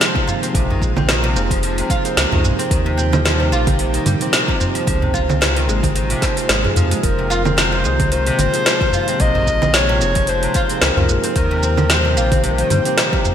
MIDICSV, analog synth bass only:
0, 0, Header, 1, 2, 480
1, 0, Start_track
1, 0, Tempo, 540541
1, 486, Time_signature, 4, 2, 24, 8
1, 11852, End_track
2, 0, Start_track
2, 0, Title_t, "Analog synth bass"
2, 0, Program_c, 0, 38
2, 484, Note_on_c, 0, 34, 97
2, 1208, Note_on_c, 0, 29, 98
2, 1221, Note_off_c, 0, 34, 0
2, 1624, Note_off_c, 0, 29, 0
2, 1927, Note_on_c, 0, 37, 90
2, 2011, Note_off_c, 0, 37, 0
2, 2062, Note_on_c, 0, 37, 104
2, 2167, Note_on_c, 0, 34, 92
2, 2180, Note_off_c, 0, 37, 0
2, 2251, Note_off_c, 0, 34, 0
2, 2406, Note_on_c, 0, 39, 96
2, 3127, Note_on_c, 0, 34, 96
2, 3140, Note_off_c, 0, 39, 0
2, 3544, Note_off_c, 0, 34, 0
2, 3606, Note_on_c, 0, 43, 78
2, 3690, Note_off_c, 0, 43, 0
2, 4328, Note_on_c, 0, 37, 93
2, 5045, Note_on_c, 0, 32, 92
2, 5059, Note_off_c, 0, 37, 0
2, 5463, Note_off_c, 0, 32, 0
2, 5765, Note_on_c, 0, 32, 80
2, 5927, Note_off_c, 0, 32, 0
2, 6004, Note_on_c, 0, 41, 83
2, 6167, Note_off_c, 0, 41, 0
2, 6245, Note_on_c, 0, 29, 93
2, 6967, Note_on_c, 0, 36, 88
2, 6980, Note_off_c, 0, 29, 0
2, 7384, Note_off_c, 0, 36, 0
2, 7447, Note_on_c, 0, 32, 83
2, 7531, Note_off_c, 0, 32, 0
2, 8171, Note_on_c, 0, 34, 97
2, 8887, Note_on_c, 0, 29, 87
2, 8900, Note_off_c, 0, 34, 0
2, 9304, Note_off_c, 0, 29, 0
2, 9607, Note_on_c, 0, 37, 89
2, 9691, Note_off_c, 0, 37, 0
2, 9739, Note_on_c, 0, 37, 105
2, 9845, Note_on_c, 0, 34, 93
2, 9858, Note_off_c, 0, 37, 0
2, 9930, Note_off_c, 0, 34, 0
2, 10086, Note_on_c, 0, 39, 97
2, 10802, Note_on_c, 0, 34, 93
2, 10816, Note_off_c, 0, 39, 0
2, 11221, Note_off_c, 0, 34, 0
2, 11285, Note_on_c, 0, 43, 74
2, 11370, Note_off_c, 0, 43, 0
2, 11852, End_track
0, 0, End_of_file